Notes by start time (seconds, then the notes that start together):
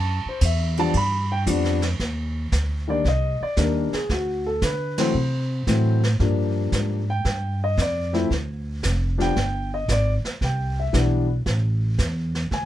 Already playing: F#2 A5
0.25 C5, muted upright bass stroke
0.41 E2, kick, hi-hat pedal, ride
0.45 E5
0.77 F3 G3 B3 D4 A5, ride
0.94 G2 B5, kick, ride
1.32 G5
1.46 F2 F3 G3 B3 D4, kick, hi-hat pedal, ride
1.64 snare
1.82 snare, ride
2.00 D#2, brush sweep, kick, snare
2.52 D2, kick, snare, hi-hat pedal
2.88 D#3 G3 A#3 D4 D5
3.04 C2 D#5, brush sweep, kick, snare
3.41 D5, muted upright bass stroke
3.57 D#2 D#3 G3 A#3 D4 A#4, kick, snare, hi-hat pedal
3.93 G#4, muted upright bass stroke, snare
4.09 D2 F#4, brush sweep, kick, snare
4.46 A4
4.62 D3 B4, kick, snare, hi-hat pedal
4.98 E3 F#3 A3 C4 C5, snare, ride
5.14 C3, brush sweep
5.67 A2 E3 F#3 A3 C4, kick, snare, hi-hat pedal
6.03 snare
6.20 G2 F3 G3 A#3 D4, brush sweep, kick, snare
6.72 G#2, kick, snare, hi-hat pedal
7.10 G5
7.25 G2, brush sweep, kick, snare
7.64 D#5
7.77 F2, kick, snare, hi-hat pedal
7.82 D5
8.13 F3 A3 C4 E4, snare
8.30 D2, brush sweep, kick, snare
8.83 F1, kick, snare, hi-hat pedal
9.18 F3 G3 B3 D4 G5, snare
9.36 G1, brush sweep, kick, snare
9.74 D#5
9.88 G#1 D5, kick, snare, hi-hat pedal
10.24 muted upright bass stroke, snare
10.41 C2 G5, brush sweep, kick, snare
10.80 E5
10.93 B1 E3 G3 B3 D4, kick, snare, hi-hat pedal
11.46 A1, brush sweep, kick, snare
11.98 E2, kick, snare, hi-hat pedal
12.35 snare
12.51 D2 G#5, brush sweep, kick, snare